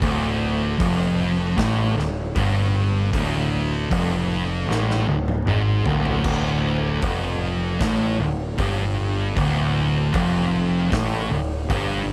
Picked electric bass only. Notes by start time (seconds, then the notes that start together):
0.02 D1
0.80 F1
1.57 A1
1.98 D1
2.36 G1
3.14 D1
3.91 F1
4.68 A1
5.07 D1
5.45 G#1
5.84 D1
6.24 D1
7.03 F1
7.81 A1
8.20 D1
8.59 G1
9.37 D1
10.14 F1
10.92 A1
11.30 D1
11.70 G1